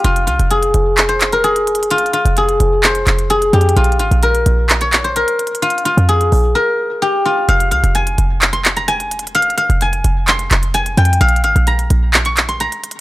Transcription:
Already playing: G4 A#4
0.04 F1 F4, closed hi-hat
0.16 closed hi-hat
0.27 C2 F4, closed hi-hat
0.39 F1, closed hi-hat
0.51 G#4, closed hi-hat
0.63 closed hi-hat
0.74 F1, closed hi-hat
0.97 clap, closed hi-hat
1.09 C5, closed hi-hat
1.21 clap, closed hi-hat
1.32 A#4, closed hi-hat
1.44 G#4, closed hi-hat
1.56 closed hi-hat
1.67 closed hi-hat
1.75 closed hi-hat
1.83 closed hi-hat
1.91 F4, closed hi-hat
1.98 closed hi-hat
2.06 closed hi-hat
2.13 F4, closed hi-hat
2.25 F1, closed hi-hat
2.37 G#4, closed hi-hat
2.49 closed hi-hat
2.60 F1, closed hi-hat
2.83 C5, clap, closed hi-hat
2.95 closed hi-hat
3.07 F1, clap, closed hi-hat
3.19 closed hi-hat
3.30 G#4, closed hi-hat
3.42 closed hi-hat
3.53 F2 G4, closed hi-hat
3.61 closed hi-hat
3.69 closed hi-hat
3.76 A#1 F4, closed hi-hat
3.84 closed hi-hat
3.92 closed hi-hat
3.99 G#1 F4, closed hi-hat
4.11 A#1, closed hi-hat
4.23 A#4, closed hi-hat
4.35 closed hi-hat
4.46 A#1, closed hi-hat
4.69 clap, closed hi-hat
4.81 C#5, closed hi-hat
4.93 clap, closed hi-hat
5.04 C5, closed hi-hat
5.16 A#4, closed hi-hat
5.28 closed hi-hat
5.39 closed hi-hat
5.47 closed hi-hat
5.55 closed hi-hat
5.62 F4, closed hi-hat
5.70 closed hi-hat
5.78 closed hi-hat
5.85 F4, closed hi-hat
5.97 F2, closed hi-hat
6.09 G#4, closed hi-hat
6.21 closed hi-hat
6.32 A#1, open hi-hat
6.55 A#4
7.02 G4
7.25 F4
7.49 F1 F5, closed hi-hat
7.60 closed hi-hat
7.71 C2 F5, closed hi-hat
7.84 F1, closed hi-hat
7.95 G#5, closed hi-hat
8.07 closed hi-hat
8.18 F1, closed hi-hat
8.42 clap, closed hi-hat
8.53 C6, closed hi-hat
8.65 clap, closed hi-hat
8.77 A#5, closed hi-hat
8.88 G#5, closed hi-hat
9.00 closed hi-hat
9.11 closed hi-hat
9.19 closed hi-hat
9.27 closed hi-hat
9.35 F5, closed hi-hat
9.42 closed hi-hat
9.50 closed hi-hat
9.57 F5, closed hi-hat
9.70 F1, closed hi-hat
9.81 G#5, closed hi-hat
9.93 closed hi-hat
10.04 F1, closed hi-hat
10.28 C6, clap, closed hi-hat
10.39 closed hi-hat
10.51 F1, clap, closed hi-hat
10.63 closed hi-hat
10.74 G#5, closed hi-hat
10.86 closed hi-hat
10.97 F2 G5, closed hi-hat
11.05 closed hi-hat
11.13 closed hi-hat
11.21 A#1 F5, closed hi-hat
11.29 closed hi-hat
11.36 closed hi-hat
11.44 G#1 F5, closed hi-hat
11.56 A#1, closed hi-hat
11.67 A#5, closed hi-hat
11.79 closed hi-hat
11.90 A#1, closed hi-hat
12.14 clap, closed hi-hat
12.25 C#6, closed hi-hat
12.37 clap, closed hi-hat
12.49 C6, closed hi-hat
12.60 A#5, closed hi-hat
12.72 closed hi-hat
12.84 closed hi-hat
12.91 closed hi-hat

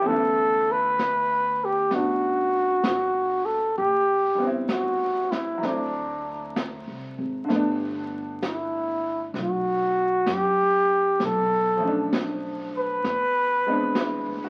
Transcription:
Already playing: F4
0.01 E3 B3
0.06 D2 C#4 A4, brush sweep
0.12 E4
0.72 B4
0.99 brush sweep, snare, hi-hat pedal
1.65 G4
1.91 A1 B3 D4 F#4, brush sweep, snare
2.84 G1, brush sweep, snare, hi-hat pedal
3.45 A4
3.76 A1 G4, brush sweep
4.35 G3 B3
4.42 C4 E4
4.69 F#4, brush sweep, snare, hi-hat pedal
5.31 E4, snare
5.58 F#3
5.62 D2 A3 C4 D4, brush sweep, snare
5.69 E4
6.56 brush sweep, snare, hi-hat pedal
6.87 C2
7.18 G#1
7.44 D3 A3
7.50 G1 B3, brush sweep, snare
7.56 D4
8.42 E4, brush sweep, snare, hi-hat pedal
9.34 B1, brush sweep, snare
9.43 F#4
10.26 F#2, brush sweep, snare, hi-hat pedal
10.33 G4
11.20 B1, brush sweep, snare
11.25 A4
11.77 F3 A3
11.84 C#4 D4
12.13 brush sweep, snare, hi-hat pedal
12.78 B4
13.04 E2, brush sweep, snare
13.67 G#3 B3 C4 D4
13.95 E4, brush sweep, snare, hi-hat pedal
14.28 D2
14.44 F#4

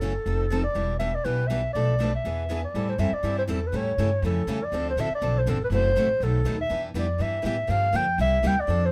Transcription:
Already playing: F#1 A4
0.01 C#3 E3 F#3 A3 C#4 E4 F#4 A4
0.26 F1 F3 C4 D#4 A4
0.50 F3 C4 D#4 A4
0.64 D5
0.75 E1 E3 G3 B3 D4 E4 G4 B4
0.99 E3 G3 B3 D4 E4 G4 B4 E5
1.15 D5
1.24 B1 E3 G3 B3 D4 E4 G4 B4
1.47 E3 G3 B3 D4 E4 G4 E5
1.51 B4
1.73 B1 B2 F3 A3 D4 A4 B4 D5
2.01 B2 F3 A3 D4 A4 B4
2.15 E5
2.25 E2 E3 B3 D4 G#4 B4
2.49 E3 B3 D4 G#4 B4
2.64 D5
2.74 A2 E3 G3 C4 E4 A4
2.89 C5
2.98 F#2 E3 G3 C4 E4 A4 E5
3.12 D5, muted upright bass stroke
3.23 G2 E3 G3 C4 E4 A4
3.38 C5
3.48 E2 E3 G3 C4 E4 A4
3.67 B4
3.72 A2 C#3 E3 G3 A3 C#4 E4 G4 A4
3.77 C#5
3.98 G2 C#3 E3 G3 A3 C#4 E4 G4 A4
4.22 F2 C#3 E3 G3 A3 C#4 E4 G4 A4
4.47 E2 C#3 E3 G3 A3 C#4 E4 G4 A4
4.64 D5
4.72 D2 D3 F3 C4 D4 A4
4.90 C5
4.96 A1 D3 F3 C4 D4 A4
5.00 E5
5.11 muted upright bass stroke
5.15 D5
5.21 B1 D3 F3 C4 D4 A4
5.38 C5
5.46 G1 D3 F3 C4 D4 A4
5.64 B4
5.70 F#1 C3 E3 F#3 A3 C4 E4 F#4 A4
5.75 C5
5.95 A1 C3 E3 F#3 A3 C4 E4 F#4 A4
6.20 B1 B2 D#3 F#3 A3 B3 D#4 F#4 A4
6.44 D#2 B2 D#3 F#3 A3 B3 D#4 F#4 A4
6.61 E5
6.70 E2 E3 G3 B3 D4 E4 G4 B4
6.94 F2 E3 G3 B3 D4 E4 G4 B4
6.98 D5
7.18 G2 E3 G3 B3 D4 E4 G4 B4 E5
7.42 A2 E3 G3 B3 D4 E4 B4 E5
7.46 G4
7.67 G2 D3 F3 A#3 D4 G4 F5
7.92 F2 D3 F3 A#3 D4 G4 G5
8.18 C2 C3 G3 A#3 E4 G4 E5
8.43 D2 C3 G3 A#3 E4 G4
8.47 G5
8.60 D5
8.67 F2 F3 C4 D4 A4
8.85 C5

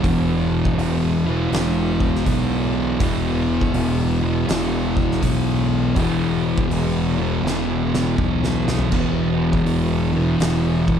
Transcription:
0.02 E1 E2 B2 E3, kick, open hi-hat
0.65 kick
0.77 E1, open hi-hat
1.26 E2 B2 E3
1.52 E1, snare, open hi-hat
2.00 kick
2.15 snare
2.26 B1, kick, open hi-hat
3.00 E1 E2 B2 E3, kick, open hi-hat
3.61 kick
3.74 E1, open hi-hat
4.21 E2 B2 E3
4.48 E1, snare, open hi-hat
4.97 kick
5.12 snare
5.22 B1, kick, open hi-hat
5.95 E1 E2 B2 E3, kick, open hi-hat
6.58 kick
6.70 E1, open hi-hat
7.18 E2 B2 E3
7.43 E1, snare
7.95 snare
8.18 B1, kick, mid tom
8.44 snare
8.68 snare
8.79 floor tom
8.91 E1 E2 B2 E3, kick, crash
9.53 kick
9.66 E1, open hi-hat
10.13 E2 B2 E3
10.40 E1, snare, open hi-hat
10.88 kick

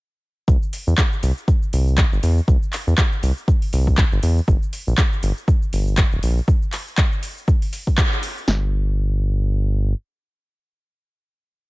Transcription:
0.48 C2, kick, cabasa
0.63 cabasa
0.73 open hi-hat, cabasa
0.87 E2, cabasa
0.98 kick, clap, cabasa
1.13 cabasa
1.23 C2, open hi-hat, cabasa
1.38 cabasa
1.48 kick, cabasa
1.63 cabasa
1.73 C2, open hi-hat, cabasa
1.88 cabasa
1.98 kick, clap, cabasa
2.12 G1, cabasa
2.23 E2, open hi-hat, cabasa
2.38 cabasa
2.48 C2, kick, cabasa
2.63 cabasa
2.73 clap, open hi-hat, cabasa
2.87 E2, cabasa
2.98 kick, clap, cabasa
3.13 cabasa
3.23 C2, open hi-hat, cabasa
3.38 cabasa
3.48 kick, cabasa
3.62 open hi-hat, cabasa
3.73 C2, open hi-hat, cabasa
3.87 kick, cabasa
3.97 kick, clap, cabasa
4.12 G1, cabasa
4.23 E2, open hi-hat, cabasa
4.38 cabasa
4.48 G1, kick, cabasa
4.63 cabasa
4.73 open hi-hat, cabasa
4.87 A#1, cabasa
4.98 kick, clap, cabasa
5.13 cabasa
5.23 G1, open hi-hat, cabasa
5.37 cabasa
5.48 kick, cabasa
5.62 cabasa
5.73 G1, open hi-hat, cabasa
5.87 cabasa
5.97 kick, clap, cabasa
6.12 D1, cabasa
6.23 A#1, open hi-hat, cabasa
6.38 cabasa
6.48 kick, cabasa
6.62 cabasa
6.72 clap, open hi-hat, cabasa
6.87 cabasa
6.98 kick, clap, cabasa
7.12 cabasa
7.23 open hi-hat, cabasa
7.38 cabasa
7.48 kick, cabasa
7.62 open hi-hat, cabasa
7.73 open hi-hat, cabasa
7.87 kick, cabasa
7.98 kick, clap, cabasa
8.13 cabasa
8.23 open hi-hat, cabasa
8.38 cabasa
8.48 G1, snare

